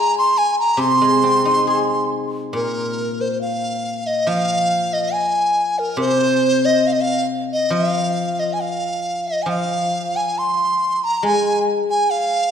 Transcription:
0.00 1.00 G#3 medium
0.00 0.18 A#5 loud
0.18 0.39 C6 medium
0.38 0.59 G#5 medium
0.60 0.81 A#5 medium
0.77 3.41 C3 medium
0.77 2.11 C6 loud
1.01 2.77 G#3 soft
1.23 2.99 C4 soft
1.45 3.21 D#4 soft
1.67 3.42 G#4 soft
2.53 5.13 A#2 medium
2.53 3.23 A#4 medium
3.21 3.41 C5 medium
3.41 4.08 F5 medium
4.07 4.30 D#5 medium
4.27 6.85 F3 medium
4.27 4.95 F5 medium
4.93 5.14 D#5 medium
5.13 5.80 G#5 medium
5.79 6.00 A#4 medium
5.97 7.71 C3 medium
5.97 6.67 C5 loud
6.65 6.88 D#5 medium
6.87 6.94 F5 medium
6.93 7.03 D#5 medium
7.01 7.25 F5 medium
7.53 7.75 D#5 medium
7.70 9.45 F3 medium
7.70 8.41 F5 medium
8.39 8.55 D#5 medium
8.53 8.63 G#5 medium
8.61 9.29 F5 medium
9.28 9.44 D#5 medium
9.42 12.09 F3 medium
9.42 9.51 G#5 medium
9.49 10.18 F5 medium
10.16 10.40 G#5 medium
10.38 11.06 C6 medium
11.04 11.17 A#5 medium
11.17 11.25 A#5 medium
11.23 12.51 G#3 medium
11.23 11.62 G#5 medium
11.90 12.12 G#5 medium
12.10 12.51 F5 medium

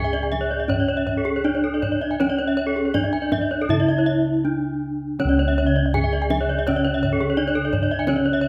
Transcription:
0.00 3.68 C#2 medium
0.00 1.41 C#4 medium
0.00 0.69 G#4 medium
0.04 0.14 E5 medium
0.13 0.23 D5 medium
0.13 kendang slap soft
0.23 0.32 G#5 medium
0.32 0.41 E5 medium
0.32 kendang high medium
0.41 0.51 C#5 medium
0.51 0.60 D5 medium
0.51 kendang slap soft
0.60 0.70 E5 medium
0.68 1.44 C#4 medium
0.68 0.79 C#5 medium
0.68 kendang low medium
0.80 0.89 D5 medium
0.88 0.98 C#5 medium
0.97 1.07 E5 medium
1.07 1.16 C#5 medium
1.07 kendang low medium
1.17 1.26 A4 medium
1.25 1.35 G#4 medium
1.25 kendang slap soft
1.36 1.45 C#5 medium
1.44 2.20 D4 loud
1.44 1.53 D4 soft
1.44 1.54 D5 medium
1.55 1.64 C#5 medium
1.64 1.73 A4 medium
1.64 kendang slap soft
1.74 1.83 D5 medium
1.82 1.92 C#5 medium
1.82 kendang high soft
1.82 kendang low medium
1.92 2.01 D5 medium
2.01 2.11 E5 medium
2.01 kendang slap soft
2.11 2.20 G#5 medium
2.20 4.41 C#4 medium
2.20 2.95 C#4 loud
2.20 2.29 C#5 medium
2.20 kendang high medium
2.30 2.39 D5 medium
2.39 2.48 C#5 medium
2.39 kendang slap soft
2.48 2.57 E5 medium
2.57 2.67 C#5 medium
2.67 2.76 A4 medium
2.76 2.85 G#4 medium
2.76 kendang slap soft
2.85 2.95 C#5 medium
2.94 3.03 D4 soft
2.94 3.70 D4 medium
2.94 3.04 D5 medium
2.94 kendang high medium
2.94 kendang low medium
3.04 3.13 E5 medium
3.13 3.23 G#5 medium
3.13 kendang slap soft
3.22 3.32 D5 medium
3.32 3.42 E5 medium
3.32 kendang high medium
3.32 kendang low medium
3.41 3.51 D5 medium
3.51 3.60 C#5 medium
3.51 kendang slap soft
3.61 3.70 A4 medium
3.69 5.90 C#3 medium
3.69 4.45 E4 medium
3.69 3.79 E5 loud
3.69 kendang low medium
3.80 3.89 D5 medium
3.88 3.98 E5 medium
3.88 kendang slap soft
3.98 4.08 C#5 medium
4.06 4.16 E5 medium
4.45 5.20 D4 medium
4.45 4.53 D4 medium
5.19 6.66 C#3 medium
5.19 7.34 C#4 medium
5.19 5.94 C#4 loud
5.19 5.29 C#5 medium
5.19 kendang high medium
5.25 8.48 C#2 medium
5.29 5.39 D5 medium
5.38 5.48 C#5 medium
5.38 kendang slap soft
5.48 5.57 E5 medium
5.58 5.67 C#5 medium
5.66 5.76 E5 medium
5.76 5.85 D5 medium
5.76 kendang slap soft
5.86 5.94 E5 medium
5.94 6.02 D4 soft
5.94 6.67 G#4 medium
5.94 6.03 G#5 loud
5.94 kendang high medium
5.94 kendang low medium
6.04 6.13 E5 medium
6.13 6.22 D5 medium
6.13 kendang slap soft
6.22 6.31 G#5 medium
6.30 6.40 E5 medium
6.30 kendang high medium
6.41 6.49 C#5 medium
6.49 6.58 D5 medium
6.49 kendang slap soft
6.59 6.67 E5 medium
6.67 8.07 C#3 medium
6.67 7.38 C#4 loud
6.67 6.76 C#5 medium
6.67 kendang low medium
6.76 6.85 D5 medium
6.85 6.93 C#5 medium
6.85 kendang slap soft
6.94 7.03 E5 medium
7.03 7.11 C#5 medium
7.03 kendang low medium
7.13 7.21 A4 medium
7.20 7.29 G#4 medium
7.20 kendang slap soft
7.30 7.38 C#5 medium
7.37 8.07 D4 medium
7.37 7.47 D4 soft
7.37 7.46 D5 medium
7.47 7.56 C#5 medium
7.55 7.64 A4 medium
7.55 kendang slap soft
7.65 7.73 D5 medium
7.73 7.81 C#5 medium
7.73 kendang low medium
7.83 7.91 D5 medium
7.91 7.99 E5 medium
7.91 kendang slap soft
7.99 8.07 G#5 medium
8.07 8.48 C#3 medium
8.07 8.48 C#4 medium
8.07 8.48 C#4 loud
8.07 8.16 C#5 medium
8.07 kendang high medium
8.16 8.24 D5 medium
8.25 8.34 C#5 medium
8.25 kendang slap soft
8.33 8.42 E5 medium
8.41 8.48 C#5 medium

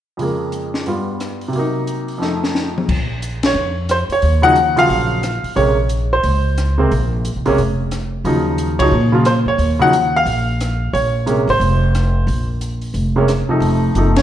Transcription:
0.17 0.85 F2 soft
0.17 0.86 C#3 soft
0.17 0.87 G#3 soft
0.17 open hi-hat soft
0.22 0.88 A#3 soft
0.52 closed hi-hat soft
0.74 snare soft
0.86 1.54 G2 soft
0.86 1.54 G3 soft
0.86 1.54 B3 soft
0.86 1.55 F4 soft
0.86 open hi-hat soft
1.20 cross-stick medium
1.20 closed hi-hat soft
1.41 open hi-hat soft
1.48 2.18 C3 medium
1.48 2.20 F#3 soft
1.53 2.22 A#3 soft
1.53 open hi-hat soft
1.59 2.21 D#4 soft
1.87 closed hi-hat soft
2.08 open hi-hat soft
2.18 2.87 F2 soft
2.18 2.88 F3 soft
2.18 2.88 A3 soft
2.18 snare soft
2.22 2.89 D#4 soft
2.44 snare soft
2.55 snare soft
2.78 mid tom medium
2.89 3.52 A#1 medium
2.89 kick medium
2.89 crash medium
3.22 closed hi-hat soft
3.43 3.76 C#5 medium
3.43 snare medium
3.43 ride medium
3.54 4.05 F2 medium
3.89 3.96 C5 medium
3.89 cross-stick medium
3.89 closed hi-hat medium
4.09 4.42 C#5 medium
4.09 muted upright bass stroke soft
4.09 open hi-hat soft
4.22 4.86 D#2 medium
4.22 open hi-hat soft
4.42 4.54 C#3 medium
4.42 4.54 F3 medium
4.42 4.55 F#3 medium
4.42 4.55 D#4 medium
4.42 4.75 F#5 loud
4.56 closed hi-hat soft
4.76 5.20 C#3 medium
4.76 5.21 F3 soft
4.76 5.21 F#3 soft
4.76 5.21 F4 medium
4.76 5.54 F5 loud
4.76 open hi-hat soft
4.89 5.40 A#1 medium
4.89 open hi-hat soft
5.23 cross-stick medium
5.23 closed hi-hat soft
5.43 muted upright bass stroke soft
5.43 open hi-hat soft
5.56 6.20 A#1 medium
5.56 5.75 C3 medium
5.56 5.76 G#3 soft
5.56 5.76 A#3 soft
5.56 5.76 C#4 medium
5.56 5.88 C#5 medium
5.56 open hi-hat soft
5.89 closed hi-hat soft
6.13 7.09 C5 medium
6.23 6.88 C#2 medium
6.23 open hi-hat soft
6.58 cross-stick medium
6.58 closed hi-hat soft
6.78 6.90 C3 medium
6.78 6.90 G#3 soft
6.78 6.90 A#3 medium
6.78 6.90 C4 medium
6.91 7.33 A#1 medium
6.91 open hi-hat soft
7.25 closed hi-hat soft
7.36 7.46 C2 medium
7.46 7.58 B1 medium
7.46 7.57 C3 medium
7.46 7.57 G#3 medium
7.46 7.58 A#3 medium
7.46 7.58 C#4 medium
7.46 open hi-hat soft
7.58 8.22 F1 medium
7.58 open hi-hat soft
7.91 cross-stick medium
7.91 closed hi-hat soft
8.25 8.89 D#2 medium
8.25 8.76 C#3 medium
8.25 8.76 F3 soft
8.25 8.77 F#3 soft
8.25 8.77 D#4 medium
8.25 open hi-hat soft
8.58 closed hi-hat soft
8.79 8.92 C#3 medium
8.79 8.92 F3 medium
8.79 8.92 F#3 medium
8.79 8.93 D#4 medium
8.79 9.11 C#5 loud
8.79 kick medium
8.79 ride medium
8.91 9.43 A#2 medium
9.12 9.24 C#3 medium
9.12 9.25 F3 medium
9.12 9.25 F#3 medium
9.12 9.26 F4 medium
9.25 9.31 C5 medium
9.25 cross-stick medium
9.25 closed hi-hat soft
9.46 9.58 F2 medium
9.46 9.82 C#5 medium
9.58 10.23 D#2 medium
9.58 open hi-hat soft
9.79 9.92 C#3 medium
9.79 9.92 F3 medium
9.79 9.92 F#3 medium
9.79 9.92 D#4 medium
9.79 10.16 F#5 loud
9.93 closed hi-hat soft
10.16 10.91 F5 medium
10.26 10.90 A#1 medium
10.26 open hi-hat soft
10.61 cross-stick medium
10.61 closed hi-hat soft
10.93 11.45 A#1 medium
10.93 11.25 C#5 medium
10.93 open hi-hat soft
11.26 11.46 C3 medium
11.26 11.46 G#3 soft
11.26 11.46 A#3 soft
11.26 11.47 C#4 medium
11.26 closed hi-hat soft
11.47 11.59 G#1 medium
11.47 12.46 C5 medium
11.47 open hi-hat soft
11.60 12.24 F1 medium
11.60 open hi-hat soft
11.95 cross-stick medium
11.95 closed hi-hat soft
12.27 12.91 A#1 medium
12.27 open hi-hat soft
12.61 closed hi-hat medium
12.81 open hi-hat soft
12.94 13.45 F1 medium
12.94 open hi-hat soft
13.16 13.28 C3 medium
13.16 13.28 G#3 medium
13.16 13.28 A#3 medium
13.16 13.29 C#4 medium
13.28 cross-stick medium
13.28 closed hi-hat soft
13.48 13.93 C3 medium
13.48 13.93 F3 soft
13.48 13.94 A3 soft
13.48 13.94 D#4 medium
13.48 muted upright bass stroke soft
13.60 13.93 F1 medium
13.60 open hi-hat soft
13.95 14.22 F#1 medium
13.95 14.15 C3 soft
13.95 14.15 F3 soft
13.95 14.16 A3 soft
13.95 14.16 D#4 medium
13.95 closed hi-hat soft
14.16 14.22 C#5 medium
14.16 snare medium
14.16 ride medium

